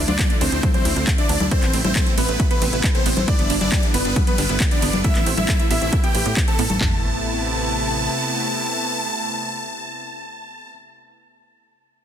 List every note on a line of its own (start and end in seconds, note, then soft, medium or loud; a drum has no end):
0.00 1.50 D3 medium
0.00 1.50 F3 medium
0.00 1.48 A3 medium
0.00 6.77 E4 medium
0.08 0.17 D2 medium
0.08 0.33 D4 medium
0.08 0.13 F4 medium
0.08 0.33 D5 medium
0.08 0.33 D5 loud
0.08 closed hi-hat medium
0.08 high conga medium
0.19 0.22 A4 medium
0.19 kick loud
0.19 clap loud
0.19 closed hi-hat medium
0.19 ride medium
0.30 0.33 A3 medium
0.30 closed hi-hat soft
0.41 0.50 D2 medium
0.41 0.67 C4 medium
0.41 0.44 D4 loud
0.41 0.67 C5 medium
0.41 0.67 C5 loud
0.41 open hi-hat loud
0.41 ride medium
0.52 0.61 D2 medium
0.52 0.57 E4 medium
0.52 closed hi-hat medium
0.63 0.70 A3 medium
0.63 kick loud
0.63 closed hi-hat medium
0.63 ride medium
0.63 high conga medium
0.74 1.08 C4 medium
0.74 0.77 D4 medium
0.74 1.08 C5 loud
0.74 closed hi-hat medium
0.85 0.94 D2 medium
0.85 0.92 E4 loud
0.85 open hi-hat loud
0.85 ride medium
0.96 1.05 D2 medium
0.96 1.01 F4 medium
0.96 closed hi-hat medium
1.07 1.10 A4 medium
1.07 kick loud
1.07 clap loud
1.07 closed hi-hat medium
1.07 ride medium
1.18 1.21 A3 medium
1.18 1.44 D4 medium
1.18 1.44 D5 loud
1.18 closed hi-hat soft
1.29 1.38 D2 loud
1.29 1.32 D4 loud
1.29 open hi-hat loud
1.29 ride medium
1.40 1.49 D2 medium
1.40 1.45 E4 medium
1.40 closed hi-hat medium
1.40 high conga medium
1.51 3.26 C3 medium
1.51 1.58 A3 medium
1.51 3.26 A3 medium
1.51 6.77 B3 medium
1.51 1.77 C4 medium
1.51 1.77 C5 loud
1.51 kick loud
1.51 closed hi-hat medium
1.51 ride medium
1.62 1.72 A1 medium
1.62 1.65 B3 medium
1.62 clap soft
1.62 closed hi-hat medium
1.73 1.83 A1 loud
1.73 1.80 C4 loud
1.73 open hi-hat loud
1.73 ride medium
1.84 1.94 A1 medium
1.84 2.10 C4 medium
1.84 1.89 E4 medium
1.84 2.10 C5 loud
1.84 closed hi-hat medium
1.84 high conga medium
1.96 1.98 A4 medium
1.96 kick loud
1.96 clap loud
1.96 closed hi-hat medium
1.96 ride medium
2.07 2.09 A3 medium
2.07 closed hi-hat medium
2.18 2.27 A1 medium
2.18 2.43 B3 medium
2.18 2.20 B3 loud
2.18 2.43 B4 loud
2.18 2.43 B4 medium
2.18 open hi-hat loud
2.18 ride medium
2.29 2.38 A1 medium
2.29 2.33 C4 medium
2.29 closed hi-hat medium
2.40 2.47 A3 medium
2.40 kick loud
2.40 closed hi-hat medium
2.40 ride medium
2.51 2.84 B3 medium
2.51 2.54 B3 medium
2.51 2.84 B4 loud
2.51 closed hi-hat medium
2.62 2.71 A1 loud
2.62 2.69 C4 loud
2.62 open hi-hat loud
2.62 ride medium
2.73 2.82 A1 medium
2.73 2.77 E4 medium
2.73 closed hi-hat medium
2.84 2.87 A4 medium
2.84 kick loud
2.84 clap loud
2.84 closed hi-hat medium
2.84 ride medium
2.95 2.98 A3 medium
2.95 3.20 C4 medium
2.95 3.20 C5 loud
2.95 3.20 C5 medium
2.95 closed hi-hat medium
3.06 3.15 A1 loud
3.06 3.09 B3 loud
3.06 open hi-hat loud
3.06 ride medium
3.17 3.26 A1 medium
3.17 3.22 C4 medium
3.17 closed hi-hat medium
3.17 high conga medium
3.28 5.03 D3 medium
3.28 5.03 G3 medium
3.28 3.35 G3 medium
3.28 3.53 D4 medium
3.28 3.53 D5 loud
3.28 kick loud
3.28 closed hi-hat medium
3.28 ride medium
3.39 3.48 G1 medium
3.39 3.42 B3 medium
3.39 closed hi-hat medium
3.50 3.59 G1 loud
3.50 3.57 D4 loud
3.50 open hi-hat loud
3.50 ride medium
3.61 3.70 G1 medium
3.61 3.86 D4 medium
3.61 3.66 E4 medium
3.61 3.86 D5 loud
3.61 closed hi-hat medium
3.61 high conga medium
3.72 3.75 G4 medium
3.72 kick loud
3.72 clap loud
3.72 closed hi-hat medium
3.72 ride medium
3.83 3.86 G3 medium
3.83 closed hi-hat medium
3.94 4.03 G1 loud
3.94 4.19 B3 medium
3.94 3.97 B3 loud
3.94 4.19 B4 loud
3.94 open hi-hat loud
3.94 ride medium
4.05 4.14 G1 medium
4.05 4.10 D4 medium
4.05 closed hi-hat medium
4.16 4.23 G3 medium
4.16 kick loud
4.16 closed hi-hat medium
4.16 ride medium
4.16 high conga medium
4.27 4.61 B3 medium
4.27 4.30 B3 medium
4.27 4.61 B4 loud
4.27 closed hi-hat medium
4.38 4.47 G1 loud
4.38 4.45 D4 loud
4.38 open hi-hat loud
4.38 ride medium
4.49 4.58 G1 medium
4.49 4.54 E4 medium
4.49 closed hi-hat medium
4.60 4.63 G4 medium
4.60 kick loud
4.60 clap loud
4.60 closed hi-hat medium
4.60 ride medium
4.71 4.74 G3 medium
4.71 4.97 D4 medium
4.71 4.97 D5 loud
4.71 closed hi-hat medium
4.82 4.91 G1 loud
4.82 4.85 B3 loud
4.82 open hi-hat loud
4.82 ride medium
4.93 5.02 G1 medium
4.93 4.98 D4 medium
4.93 closed hi-hat medium
4.93 high conga medium
5.04 6.79 C3 medium
5.04 5.11 A3 medium
5.04 6.79 A3 medium
5.04 5.30 E4 medium
5.04 5.30 E5 loud
5.04 kick loud
5.04 closed hi-hat medium
5.04 ride medium
5.15 5.25 A1 medium
5.15 5.18 B3 medium
5.15 clap soft
5.15 closed hi-hat medium
5.26 5.36 A1 loud
5.26 5.33 C4 loud
5.26 open hi-hat loud
5.26 ride medium
5.37 5.47 A1 medium
5.37 5.63 E4 medium
5.37 5.42 E4 medium
5.37 5.63 E5 loud
5.37 closed hi-hat medium
5.37 high conga medium
5.49 5.51 A4 medium
5.49 kick loud
5.49 clap loud
5.49 closed hi-hat medium
5.49 ride medium
5.60 5.62 A3 medium
5.60 closed hi-hat medium
5.71 5.80 A1 medium
5.71 5.73 B3 loud
5.71 5.96 E4 medium
5.71 5.96 E5 loud
5.71 open hi-hat loud
5.71 ride medium
5.82 5.91 A1 medium
5.82 5.86 C4 medium
5.82 closed hi-hat medium
5.93 6.00 A3 medium
5.93 kick loud
5.93 closed hi-hat medium
5.93 ride medium
6.04 6.06 B3 medium
6.04 6.37 G4 medium
6.04 6.37 G5 medium
6.04 6.37 G5 loud
6.04 closed hi-hat medium
6.15 6.24 A1 loud
6.15 6.19 B4 medium
6.15 open hi-hat loud
6.15 ride medium
6.26 6.35 A2 medium
6.26 6.30 B3 medium
6.26 closed hi-hat medium
6.37 6.40 B3 medium
6.37 kick loud
6.37 clap loud
6.37 closed hi-hat medium
6.37 ride medium
6.48 6.51 C4 loud
6.48 6.73 A4 medium
6.48 6.73 A5 loud
6.48 closed hi-hat medium
6.59 6.68 A2 loud
6.59 6.62 B3 loud
6.59 open hi-hat loud
6.59 ride medium
6.70 6.79 A1 medium
6.70 6.74 A3 medium
6.70 closed hi-hat medium
6.70 high conga medium
6.81 8.09 A1 medium
6.81 10.69 C3 medium
6.81 7.01 A3 medium
6.81 10.69 A3 medium
6.81 10.69 B3 medium
6.81 10.69 E4 loud
6.81 10.69 A5 loud
6.81 10.69 A5 medium
6.81 kick loud
6.81 clap medium
6.81 floor tom loud